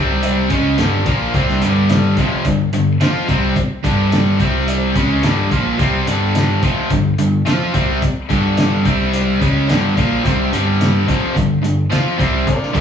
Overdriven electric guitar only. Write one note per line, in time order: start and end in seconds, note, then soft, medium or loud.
0.00 0.49 C3 medium
0.00 0.49 G3 loud
0.00 0.50 C4 medium
0.50 0.77 C#3 medium
0.50 0.77 G#3 medium
0.50 0.78 C#4 medium
0.78 1.05 G2 medium
0.78 1.05 D3 medium
0.78 1.06 G3 medium
1.05 1.33 A#2 medium
1.05 1.33 F3 medium
1.05 1.33 A#3 medium
1.33 1.61 C3 medium
1.33 1.61 G3 medium
1.33 1.61 C4 medium
1.62 2.17 G2 medium
1.62 2.17 D3 medium
1.62 2.17 G3 medium
2.17 2.44 F2 medium
2.17 2.45 C3 medium
2.17 2.45 F3 medium
2.45 2.68 G2 medium
2.45 2.68 D3 medium
2.73 2.95 G2 medium
2.73 2.95 D3 medium
3.00 3.27 F3 medium
3.00 3.27 C4 loud
3.00 3.28 F4 medium
3.27 3.55 C3 medium
3.27 3.55 G3 medium
3.27 3.56 C4 medium
3.83 4.39 G2 medium
3.83 4.38 D3 medium
3.83 4.38 G3 medium
4.39 4.94 C3 medium
4.39 4.94 G3 medium
4.39 4.95 C4 medium
4.94 5.22 C#3 medium
4.94 5.22 G#3 medium
4.94 5.23 C#4 medium
5.22 5.50 G2 medium
5.22 5.50 D3 medium
5.22 5.50 G3 medium
5.50 5.78 A#2 medium
5.50 5.78 F3 medium
5.50 5.78 A#3 medium
5.78 6.06 C3 medium
5.78 6.06 G3 medium
5.78 6.06 C4 medium
6.07 6.62 G2 medium
6.07 6.62 D3 medium
6.07 6.62 G3 medium
6.63 6.90 F2 loud
6.63 6.90 C3 medium
6.63 6.90 F3 medium
6.91 7.13 G2 medium
6.91 7.13 D3 medium
7.19 7.41 G2 medium
7.19 7.41 D3 medium
7.46 7.73 F3 medium
7.46 7.73 C4 medium
7.46 7.74 F4 loud
7.74 8.01 C3 medium
7.74 8.01 G3 medium
7.74 8.01 C4 medium
8.31 8.85 G2 medium
8.31 8.85 D3 medium
8.31 8.85 G3 medium
8.85 9.40 C3 medium
8.85 9.40 G3 medium
8.85 9.41 C4 loud
9.40 9.67 C#3 medium
9.40 9.68 G#3 medium
9.40 9.68 C#4 medium
9.69 9.96 G2 medium
9.69 9.96 D3 medium
9.69 9.96 G3 medium
9.96 10.23 A#2 medium
9.96 10.24 F3 medium
9.96 10.24 A#3 medium
10.24 10.51 C3 medium
10.24 10.51 G3 loud
10.24 10.52 C4 loud
10.51 11.07 G2 medium
10.51 11.07 D3 medium
10.51 11.07 G3 medium
11.07 11.34 F2 loud
11.07 11.35 C3 medium
11.07 11.35 F3 loud
11.35 11.58 G2 medium
11.35 11.58 D3 medium
11.62 11.85 G2 medium
11.62 11.85 D3 medium
11.90 12.17 F3 medium
11.90 12.17 C4 medium
11.90 12.18 F4 loud
12.17 12.45 C3 medium
12.17 12.45 G3 medium
12.17 12.46 C4 medium
12.73 12.81 G2 medium
12.73 12.81 D3 loud
12.73 12.81 G3 medium